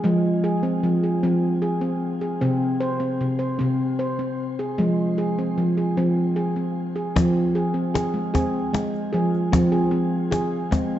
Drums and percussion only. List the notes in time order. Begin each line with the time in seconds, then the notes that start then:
7.16 cajon bass, cajon slap
7.36 cajon slap
7.95 cajon slap
8.35 cajon bass, cajon slap
8.74 cajon slap
8.94 cajon slap
9.34 cajon slap
9.53 cajon bass, cajon slap
9.73 cajon slap
10.32 cajon slap
10.72 cajon bass, cajon slap